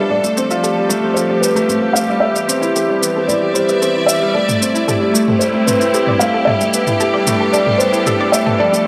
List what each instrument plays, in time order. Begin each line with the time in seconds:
Already playing: grand piano G3 B3 D4 F4 G4, string section G3 D4 A4, felt piano E5
0.09 string section F3, grand piano G3, synth arpeggio sound A3, felt piano D5
0.24 grand piano A3, shaker
0.37 grand piano C4, synth arpeggio sound C5, shaker
0.44 string section G4
0.50 grand piano F4, synth arpeggio sound E5, shaker
0.63 grand piano G4, synth arpeggio sound A4, shaker
0.77 grand piano G3
0.89 grand piano A3, shaker
1.04 grand piano C4
1.14 grand piano F4, synth arpeggio sound A4, felt piano C5, shaker
1.30 grand piano G4, synth arpeggio sound D5
1.41 grand piano G3, felt piano B4, shaker
1.56 grand piano A3, synth arpeggio sound A4, shaker
1.69 synth arpeggio sound A3, grand piano C4, shaker
1.82 grand piano F4
1.93 grand piano G4, synth arpeggio sound C5, felt piano F5, shaker
2.08 grand piano G3, synth arpeggio sound E5
2.20 string section E3, grand piano G3, synth arpeggio sound A4, felt piano E5
2.35 grand piano B3, shaker
2.48 grand piano C4, shaker
2.61 grand piano E4, shaker
2.74 grand piano G4, synth arpeggio sound A4, shaker
2.88 grand piano G3, synth arpeggio sound D5
3.01 grand piano B3, shaker
3.15 grand piano C4, synth arpeggio sound A4
3.19 string section D5 E5
3.27 synth arpeggio sound A3, grand piano E4, felt piano D5, shaker
3.42 grand piano G4
3.54 grand piano G3, felt piano C5, synth arpeggio sound C5, shaker
3.69 grand piano B3, synth arpeggio sound E5, shaker
3.82 grand piano C4, synth arpeggio sound A4, shaker
3.95 grand piano E4
4.06 grand piano G4, felt piano E5, shaker
4.22 grand piano G3
4.33 grand piano G3, string section A3, synth arpeggio sound A4, felt piano D5
4.49 grand piano A3, mid tom, shaker
4.60 grand piano C4, string section E4, shaker
4.74 grand piano E4, shaker
4.88 grand piano G4, synth arpeggio sound A4, mid tom, shaker
5.01 grand piano G3, synth arpeggio sound D5
5.14 grand piano A3, shaker
5.27 grand piano C4, string section C4 G4, synth arpeggio sound A4, mid tom
5.39 grand piano G3, synth arpeggio sound A4, felt piano C5, shaker
5.54 grand piano A3
5.66 grand piano C4, felt piano B4, mid tom, shaker
5.80 grand piano E4, shaker
5.93 grand piano G4, synth arpeggio sound A4, shaker
6.07 grand piano G3, synth arpeggio sound D5, mid tom
6.19 grand piano A3, felt piano F5, shaker
6.34 grand piano C4, synth arpeggio sound A4
6.45 string section G3, grand piano G3, synth arpeggio sound A4, felt piano E5, mid tom
6.61 grand piano A3, string section D4, shaker
6.74 grand piano B3, shaker
6.87 grand piano E4, mid tom, shaker
7.00 grand piano G4, synth arpeggio sound A4, shaker
7.14 grand piano G3, synth arpeggio sound D5
7.27 grand piano A3, mid tom, shaker
7.40 grand piano B3, synth arpeggio sound A4, string section A4
7.52 grand piano G3, synth arpeggio sound A4, felt piano D5, shaker
7.66 grand piano A3, mid tom
7.78 grand piano B3, felt piano C5, shaker
7.92 grand piano E4, shaker
8.06 grand piano G4, synth arpeggio sound A4, mid tom, shaker
8.19 grand piano G3, synth arpeggio sound D5
8.32 grand piano A3, felt piano E5, shaker
8.46 grand piano B3, synth arpeggio sound A4, mid tom
8.58 string section F3, grand piano G3, synth arpeggio sound A4, felt piano D5
8.72 grand piano A3, shaker